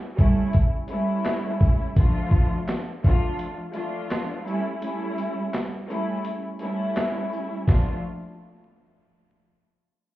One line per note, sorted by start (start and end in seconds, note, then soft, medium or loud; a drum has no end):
0.15 0.68 G3 loud
0.15 0.69 A3 medium
0.15 0.69 C#4 medium
0.15 0.69 E4 loud
0.15 kick loud
0.15 shaker medium
0.53 kick loud
0.53 closed hi-hat medium
0.88 1.89 G3 loud
0.88 1.89 A3 medium
0.88 1.89 C#4 medium
0.88 1.90 E4 loud
0.88 closed hi-hat medium
0.88 shaker medium
1.25 snare loud
1.25 clap medium
1.25 closed hi-hat medium
1.61 kick medium
1.61 shaker medium
1.96 2.80 F3 loud
1.96 2.81 A3 medium
1.96 2.81 D4 medium
1.96 2.81 F4 loud
1.96 kick loud
1.96 closed hi-hat medium
2.31 kick medium
2.31 shaker medium
2.68 snare loud
2.68 clap medium
2.68 closed hi-hat medium
3.03 3.55 F3 loud
3.03 3.55 A3 medium
3.03 3.55 D4 medium
3.03 3.56 F4 loud
3.03 kick loud
3.03 shaker medium
3.39 closed hi-hat medium
3.72 4.45 F3 loud
3.72 4.44 A3 medium
3.72 4.46 D4 medium
3.72 4.46 F4 loud
3.72 closed hi-hat soft
3.72 shaker soft
4.10 snare loud
4.10 clap medium
4.10 closed hi-hat medium
4.44 4.79 G3 loud
4.44 4.79 A3 medium
4.44 4.79 C#4 medium
4.44 4.80 E4 loud
4.44 shaker soft
4.82 5.66 G3 loud
4.82 5.66 A3 medium
4.82 5.67 C#4 medium
4.82 5.67 E4 loud
4.82 closed hi-hat loud
5.18 closed hi-hat medium
5.18 shaker medium
5.54 snare loud
5.54 clap medium
5.54 closed hi-hat medium
5.86 6.39 G3 loud
5.86 6.40 A3 medium
5.86 6.40 C#4 medium
5.86 6.40 E4 loud
5.86 shaker medium
6.25 closed hi-hat medium
6.59 7.60 G3 loud
6.59 7.61 A3 medium
6.59 7.61 C#4 medium
6.59 7.61 E4 loud
6.59 closed hi-hat medium
6.59 shaker medium
6.96 snare loud
6.96 clap medium
6.96 closed hi-hat medium
7.33 shaker medium
7.67 7.95 F3 medium
7.67 7.95 A3 medium
7.67 7.96 D4 medium
7.67 7.96 F4 loud
7.67 kick loud
7.67 snare loud